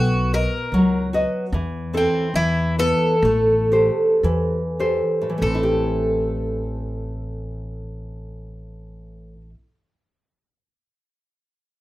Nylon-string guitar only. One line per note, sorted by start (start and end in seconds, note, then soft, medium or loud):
0.00 0.70 B3 medium
0.33 0.97 F#4 soft
0.33 0.97 D#5 soft
0.74 1.51 F#3 medium
1.13 1.45 F#4 medium
1.13 1.45 B4 soft
1.13 1.45 D#5 medium
1.54 2.33 E3 medium
1.94 2.26 C4 soft
1.94 2.27 E4 soft
1.94 2.27 A4 medium
2.36 3.21 E3 medium
2.79 3.14 B3 medium
2.79 3.15 E4 soft
2.79 3.15 B4 medium
3.25 4.21 A3 medium
3.72 4.58 G4 soft
3.72 4.58 A4 soft
3.72 4.59 C5 soft
4.24 5.28 E3 medium
4.79 5.29 G4 soft
4.79 5.29 A4 soft
4.79 5.29 C5 medium
5.22 9.33 A2 medium
5.30 9.41 E3 soft
5.38 9.49 A3 soft
5.46 9.58 C4 soft
5.55 9.66 E4 soft
5.63 9.75 G4 medium